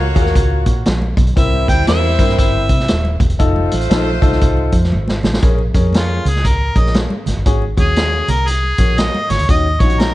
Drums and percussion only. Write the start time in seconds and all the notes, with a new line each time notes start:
0.00 muted conga
0.15 kick, closed hi-hat, low conga
0.26 snare
0.34 kick, closed hi-hat, muted conga
0.50 muted conga
0.66 kick, closed hi-hat
0.86 snare, closed hi-hat, high conga
1.02 muted conga, high conga
1.17 kick, closed hi-hat, low conga
1.27 closed hi-hat
1.37 kick, closed hi-hat
1.53 muted conga, high conga
1.68 kick, closed hi-hat, high conga
1.87 snare, closed hi-hat, muted conga, high conga
2.04 muted conga
2.19 kick, closed hi-hat, low conga
2.29 snare
2.39 kick, closed hi-hat
2.54 muted conga
2.69 kick, closed hi-hat
2.80 snare
2.88 snare, closed hi-hat, muted conga, high conga
3.05 muted conga, high conga
3.20 kick, closed hi-hat, low conga
3.30 closed hi-hat
3.39 kick, closed hi-hat
3.56 muted conga, high conga
3.71 closed hi-hat, high conga
3.81 closed hi-hat
3.91 snare, closed hi-hat, high conga
4.07 muted conga
4.22 kick, closed hi-hat, low conga
4.32 snare
4.41 kick, closed hi-hat
4.57 muted conga
4.72 kick, closed hi-hat
4.84 snare
4.92 muted conga, high conga
5.08 snare, muted conga, high conga
5.23 snare, low conga
5.34 snare
5.42 kick, closed hi-hat, muted conga
5.58 muted conga
5.74 kick, closed hi-hat, high conga
5.93 snare, closed hi-hat, muted conga, high conga
6.25 closed hi-hat, low conga
6.36 snare
6.45 kick, closed hi-hat
6.75 kick, closed hi-hat
6.86 snare
6.94 snare, closed hi-hat, muted conga, high conga
7.10 muted conga, high conga
7.26 snare, closed hi-hat, low conga
7.46 kick, closed hi-hat, muted conga
7.62 muted conga
7.77 kick, closed hi-hat, high conga
7.96 snare, closed hi-hat, muted conga, high conga
8.13 muted conga
8.28 closed hi-hat, low conga
8.47 closed hi-hat, muted conga
8.64 muted conga
8.78 kick, closed hi-hat
8.98 snare, closed hi-hat, high conga
9.14 muted conga, high conga
9.30 snare, closed hi-hat, low conga
9.39 closed hi-hat
9.49 kick, closed hi-hat
9.80 kick, closed hi-hat, high conga
9.90 closed hi-hat
10.00 snare, closed hi-hat, high conga